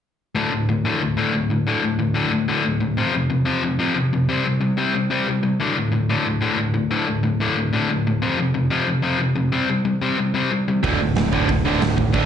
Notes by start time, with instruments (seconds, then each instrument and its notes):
0.35 overdriven electric guitar D2 A2 D3
0.52 overdriven electric guitar D2 A2
0.69 overdriven electric guitar D2 A2
0.85 overdriven electric guitar D2 A2 D3
1.01 overdriven electric guitar D2 A2
1.17 overdriven electric guitar D2 A2 D3
1.33 overdriven electric guitar D2 A2
1.50 overdriven electric guitar D2 A2
1.67 overdriven electric guitar D2 A2 D3
1.83 overdriven electric guitar D2 A2
1.99 overdriven electric guitar D2 A2
2.14 overdriven electric guitar D2 A2 D3
2.32 overdriven electric guitar D2 A2
2.48 overdriven electric guitar D2 A2 D3
2.64 overdriven electric guitar D2 A2
2.80 overdriven electric guitar D2 A2
2.97 overdriven electric guitar F2 C3 F3
3.14 overdriven electric guitar F2 C3
3.30 overdriven electric guitar F2 C3
3.45 overdriven electric guitar F2 C3 F3
3.63 overdriven electric guitar F2 C3
3.79 overdriven electric guitar F2 C3 F3
3.95 overdriven electric guitar F2 C3
4.13 overdriven electric guitar F2 C3
4.29 overdriven electric guitar C3 G3 C4
4.45 overdriven electric guitar C3 G3
4.61 overdriven electric guitar C3 G3
4.77 overdriven electric guitar C3 G3 C4
4.94 overdriven electric guitar C3 G3
5.10 overdriven electric guitar C3 G3 C4
5.28 overdriven electric guitar C3 G3
5.43 overdriven electric guitar C3 G3
5.60 overdriven electric guitar D2 A2 D3
5.76 overdriven electric guitar D2 A2
5.92 overdriven electric guitar D2 A2
6.09 overdriven electric guitar D2 A2 D3
6.26 overdriven electric guitar D2 A2
6.41 overdriven electric guitar D2 A2 D3
6.58 overdriven electric guitar D2 A2
6.74 overdriven electric guitar D2 A2
6.91 overdriven electric guitar D2 A2 D3
7.07 overdriven electric guitar D2 A2
7.23 overdriven electric guitar D2 A2
7.40 overdriven electric guitar D2 A2 D3
7.57 overdriven electric guitar D2 A2
7.73 overdriven electric guitar D2 A2 D3
7.90 overdriven electric guitar D2 A2
8.07 overdriven electric guitar D2 A2
8.22 overdriven electric guitar F2 C3 F3
8.39 overdriven electric guitar F2 C3
8.54 overdriven electric guitar F2 C3
8.70 overdriven electric guitar F2 C3 F3
8.87 overdriven electric guitar F2 C3
9.02 overdriven electric guitar F2 C3 F3
9.19 overdriven electric guitar F2 C3
9.35 overdriven electric guitar F2 C3
9.52 overdriven electric guitar C3 G3 C4
9.69 overdriven electric guitar C3 G3
9.85 overdriven electric guitar C3 G3
10.01 overdriven electric guitar C3 G3 C4
10.18 overdriven electric guitar C3 G3
10.34 overdriven electric guitar C3 G3 C4
10.51 overdriven electric guitar C3 G3
10.68 overdriven electric guitar C3 G3
10.83 picked electric bass D1, overdriven electric guitar D2 A2 D3, kick, open hi-hat
11.00 picked electric bass D1, overdriven electric guitar D2 A2
11.15 picked electric bass D1, overdriven electric guitar D2 A2, snare, open hi-hat
11.33 picked electric bass D1, overdriven electric guitar D2 A2 D3, kick
11.48 picked electric bass D1, overdriven electric guitar D2 A2, kick, open hi-hat
11.65 picked electric bass D1, overdriven electric guitar D2 A2 D3
11.81 picked electric bass D1, overdriven electric guitar D2 A2, snare, open hi-hat
11.96 picked electric bass D1, overdriven electric guitar D2 A2, kick
12.12 picked electric bass D1, overdriven electric guitar D2 A2 D3, kick, open hi-hat